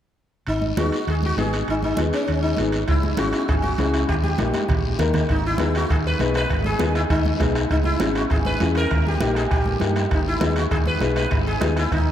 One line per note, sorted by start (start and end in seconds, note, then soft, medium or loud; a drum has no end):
0.47 0.71 G#1 medium
0.47 0.79 D#4 medium
0.47 high conga soft
0.47 high timbale medium
0.47 long guiro medium
0.61 high conga medium
0.77 0.89 D#2 medium
0.77 0.98 B3 medium
0.77 0.98 D#4 medium
0.77 1.09 F#4 medium
0.77 0.99 G#4 medium
0.77 high conga medium
0.77 high timbale medium
0.77 short guiro medium
0.92 high timbale medium
0.92 short guiro medium
1.07 1.31 D#2 medium
1.07 1.15 G#4 medium
1.07 high conga soft
1.07 high timbale medium
1.07 long guiro medium
1.23 1.38 F#4 medium
1.23 high conga medium
1.37 1.61 G#1 medium
1.37 1.59 B3 medium
1.37 1.59 D#4 medium
1.37 1.59 G#4 medium
1.37 1.66 G#4 medium
1.37 high conga medium
1.37 high timbale medium
1.37 short guiro medium
1.53 high timbale medium
1.53 short guiro medium
1.67 1.92 G#1 medium
1.67 1.75 D#4 medium
1.67 high conga soft
1.67 high timbale medium
1.67 long guiro medium
1.83 2.11 D#4 medium
1.83 high conga medium
1.97 2.10 D#2 medium
1.97 2.19 B3 medium
1.97 2.19 D#4 medium
1.97 2.19 G#4 medium
1.97 high conga medium
1.97 high timbale medium
1.97 short guiro medium
2.13 2.41 C#4 medium
2.13 high timbale medium
2.13 short guiro medium
2.27 2.52 D#2 medium
2.27 high conga soft
2.27 high timbale medium
2.27 long guiro medium
2.42 2.71 D#4 medium
2.57 2.82 G#1 medium
2.57 2.79 B3 medium
2.57 2.79 D#4 medium
2.57 2.80 G#4 medium
2.57 high conga medium
2.57 high timbale medium
2.57 short guiro medium
2.72 high timbale medium
2.72 short guiro medium
2.88 3.13 C#2 medium
2.88 3.18 E4 medium
2.88 bombo low medium
2.88 bombo rim medium
2.88 high conga soft
2.88 high timbale medium
2.88 long guiro medium
3.03 high conga medium
3.17 3.31 G#1 medium
3.17 3.39 C#4 medium
3.17 3.40 E4 medium
3.17 3.48 F#4 medium
3.17 3.40 G#4 medium
3.17 bombo rim medium
3.17 high conga medium
3.17 high timbale medium
3.17 short guiro medium
3.33 bombo rim medium
3.33 high timbale medium
3.33 short guiro medium
3.48 3.73 G#1 medium
3.48 3.53 G#4 medium
3.48 bombo low medium
3.48 bombo rim medium
3.48 high conga soft
3.48 high timbale medium
3.48 long guiro medium
3.62 4.05 F#4 medium
3.62 high conga medium
3.78 4.03 C#2 medium
3.78 4.00 C#4 medium
3.78 4.00 E4 medium
3.78 4.00 G#4 medium
3.78 bombo rim medium
3.78 high conga medium
3.78 high timbale medium
3.78 low timbale medium
3.78 short guiro medium
3.94 bombo rim medium
3.94 high timbale medium
3.94 short guiro medium
4.09 4.33 D#2 medium
4.09 4.14 G4 medium
4.09 bombo low medium
4.09 bombo rim medium
4.09 high conga soft
4.09 high timbale medium
4.09 long guiro medium
4.24 4.80 G4 medium
4.24 high conga medium
4.38 4.51 A#1 medium
4.38 4.60 A#3 medium
4.38 4.60 D#4 medium
4.38 4.61 G4 medium
4.38 bombo rim medium
4.38 high conga loud
4.38 high timbale medium
4.38 short guiro medium
4.54 bombo rim medium
4.54 high conga medium
4.54 high timbale medium
4.54 short guiro medium
4.69 4.94 A#1 medium
4.69 bombo low medium
4.69 bombo rim medium
4.69 low conga medium
4.69 high timbale medium
4.69 long guiro medium
4.99 5.23 D#2 loud
4.99 5.20 A#3 medium
4.99 5.21 D#4 medium
4.99 5.21 A#4 medium
4.99 bombo rim medium
4.99 low conga medium
4.99 high timbale medium
4.99 short guiro medium
5.14 bombo rim medium
5.14 low conga medium
5.14 high timbale medium
5.14 short guiro medium
5.29 5.54 G#1 loud
5.29 5.46 D#4 medium
5.29 bombo low medium
5.29 bombo rim medium
5.29 high conga soft
5.29 high timbale medium
5.29 long guiro medium
5.46 5.74 E4 medium
5.58 5.84 D#2 medium
5.58 5.80 B3 medium
5.58 5.81 D#4 medium
5.58 5.81 G#4 medium
5.58 bombo rim medium
5.58 high conga medium
5.58 high timbale medium
5.58 short guiro medium
5.75 5.91 F#4 medium
5.75 bombo rim medium
5.75 high timbale medium
5.75 short guiro medium
5.89 6.14 D#2 medium
5.89 5.96 G#4 medium
5.89 bombo low medium
5.89 bombo rim medium
5.89 high conga soft
5.89 high timbale medium
5.89 long guiro medium
6.07 6.36 B4 medium
6.19 6.44 B1 medium
6.19 6.41 B3 medium
6.19 6.41 D#4 medium
6.19 6.41 G#4 medium
6.19 bombo rim medium
6.19 high conga medium
6.19 high timbale medium
6.19 short guiro medium
6.34 6.64 B4 loud
6.34 bombo rim medium
6.34 high timbale medium
6.34 short guiro medium
6.49 6.74 G#1 loud
6.49 bombo low medium
6.49 bombo rim medium
6.49 high conga soft
6.49 high timbale medium
6.49 long guiro medium
6.64 6.93 G#4 medium
6.64 high conga medium
6.79 7.03 D#2 medium
6.79 7.00 B3 medium
6.79 7.01 D#4 medium
6.79 7.01 G#4 medium
6.79 bombo rim medium
6.79 high conga medium
6.79 high timbale medium
6.79 short guiro medium
6.95 7.01 E4 medium
6.95 bombo rim medium
6.95 high timbale medium
6.95 short guiro medium
7.10 7.34 D#2 medium
7.10 7.52 D#4 medium
7.10 bombo low medium
7.10 bombo rim medium
7.10 high conga soft
7.10 high timbale medium
7.10 long guiro medium
7.25 high conga medium
7.39 7.64 B1 medium
7.39 7.61 B3 medium
7.39 7.61 D#4 medium
7.39 7.61 G#4 medium
7.39 bombo low medium
7.39 bombo rim medium
7.39 high conga medium
7.39 high timbale medium
7.39 low timbale medium
7.39 short guiro medium
7.55 bombo rim medium
7.55 high timbale medium
7.55 short guiro medium
7.70 7.94 C#2 medium
7.70 7.76 D#4 medium
7.70 bombo low medium
7.70 bombo rim medium
7.70 high conga soft
7.70 high timbale medium
7.70 long guiro medium
7.84 8.13 E4 loud
7.84 high conga medium
7.99 8.24 G#1 medium
7.99 8.21 C#4 medium
7.99 8.22 E4 medium
7.99 8.21 G#4 medium
7.99 bombo rim medium
7.99 high conga medium
7.99 high timbale medium
7.99 short guiro medium
8.15 8.22 F#4 medium
8.15 bombo rim medium
8.15 high timbale medium
8.15 short guiro medium
8.30 8.55 G#1 medium
8.30 8.36 G#4 medium
8.30 bombo low medium
8.30 bombo rim medium
8.30 high conga soft
8.30 high timbale medium
8.30 long guiro medium
8.45 8.74 B4 loud
8.45 high conga medium
8.60 8.85 E2 medium
8.60 8.81 C#4 medium
8.60 8.82 E4 medium
8.60 8.82 G#4 medium
8.60 bombo rim medium
8.60 high conga medium
8.60 high timbale medium
8.60 low timbale medium
8.60 short guiro medium
8.75 9.04 A#4 loud
8.75 bombo rim medium
8.75 high timbale medium
8.75 short guiro medium
8.91 9.15 D#2 loud
8.91 bombo low medium
8.91 bombo rim medium
8.91 high conga soft
8.91 high timbale medium
8.91 long guiro medium
9.07 9.35 G4 medium
9.07 high conga medium
9.20 9.45 A#1 medium
9.20 9.41 A#3 medium
9.20 9.42 D#4 medium
9.20 9.42 G4 medium
9.20 bombo rim medium
9.20 high conga medium
9.20 high timbale medium
9.20 short guiro medium
9.35 9.42 G#4 medium
9.35 bombo rim medium
9.35 high timbale medium
9.35 short guiro medium
9.51 9.75 A#1 medium
9.51 9.93 G4 medium
9.51 bombo low medium
9.51 bombo rim medium
9.51 high conga soft
9.51 high timbale medium
9.51 long guiro medium
9.65 high conga medium
9.80 10.05 G2 medium
9.80 10.01 A#3 medium
9.80 10.02 D#4 medium
9.80 10.02 G4 medium
9.80 bombo rim medium
9.80 high conga medium
9.80 high timbale medium
9.80 short guiro medium
9.96 bombo rim medium
9.96 high timbale medium
9.96 short guiro medium
10.11 10.35 G#1 medium
10.11 10.19 D#4 medium
10.11 bombo low medium
10.11 bombo rim medium
10.11 high conga soft
10.11 high timbale medium
10.11 long guiro medium
10.28 10.55 E4 loud
10.40 10.65 D#2 medium
10.40 10.62 B3 medium
10.40 10.62 D#4 medium
10.40 10.62 G#4 medium
10.40 bombo rim medium
10.40 high conga medium
10.40 high timbale medium
10.40 short guiro medium
10.56 10.63 F#4 medium
10.56 bombo rim medium
10.56 high timbale medium
10.56 short guiro medium
10.71 10.95 D#2 medium
10.71 10.77 G#4 loud
10.71 bombo low medium
10.71 bombo rim medium
10.71 high conga soft
10.71 high timbale medium
10.71 long guiro medium
10.86 11.15 B4 medium
10.86 high conga medium
11.01 11.25 B1 medium
11.01 11.22 B3 medium
11.01 11.22 D#4 medium
11.01 11.22 G#4 medium
11.01 bombo rim medium
11.01 high conga medium
11.01 high timbale medium
11.01 short guiro medium
11.16 11.45 B4 medium
11.16 bombo rim medium
11.16 high timbale medium
11.16 short guiro medium
11.31 11.55 G#1 loud
11.31 bombo low medium
11.31 bombo rim medium
11.31 high conga soft
11.31 high timbale medium
11.31 long guiro medium
11.47 11.75 G#4 loud
11.60 11.85 D#2 medium
11.60 11.82 B3 medium
11.60 11.82 D#4 medium
11.60 11.82 G#4 medium
11.60 bombo rim medium
11.60 high conga medium
11.60 high timbale medium
11.60 short guiro medium
11.76 11.91 E4 medium
11.76 bombo rim medium
11.76 high timbale medium
11.76 short guiro medium
11.92 12.12 D#2 medium
11.92 12.12 D#4 medium
11.92 bombo low medium
11.92 bombo rim medium
11.92 high conga soft
11.92 high timbale medium
11.92 long guiro medium